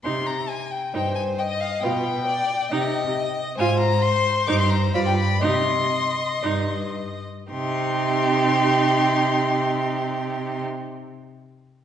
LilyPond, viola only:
\new Staff \with { instrumentName = "Viola" } { \time 4/4 \key c \minor \tempo 4 = 123 ees'8 r4. ees'8 r4. | f'8 r4. ees'8 r4. | f'8 r4. ees'8 r8 f'8 r8 | ees'8 r4. ees'8 r4. |
ees'1~ | ees'1 | }